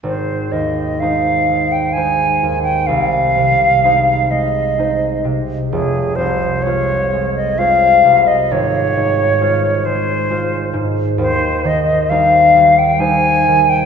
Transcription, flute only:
\new Staff \with { instrumentName = "Flute" } { \time 3/4 \key aes \major \tempo 4 = 65 c''8 ees''8 f''8. g''16 aes''8. g''16 | f''4. ees''4 r8 | aes'8 c''8 des''8. ees''16 f''8. ees''16 | des''4. c''4 r8 |
c''8 ees''8 f''8. g''16 aes''8. g''16 | }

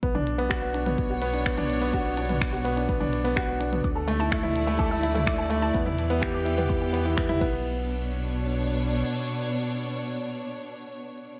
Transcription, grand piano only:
\new Staff \with { instrumentName = "Grand piano" } { \time 4/4 \key b \minor \tempo 4 = 126 b16 d'16 r16 b16 fis'16 b16 d'16 b16 r16 fis'16 b16 d'16 b16 d'16 r16 b16 | fis'16 b16 d'16 b16 r16 fis'16 b16 d'16 b16 d'16 r16 b16 fis'16 b16 d'16 b16 | r16 a'16 a16 e'16 a16 e'16 r16 a16 a'16 a16 e'16 a16 r16 a'16 a16 e'16 | b16 e'16 r16 b16 g'16 b16 e'16 b16 r16 g'16 b16 e'16 b16 e'16 b8~ |
b8 r2. r8 | r1 | }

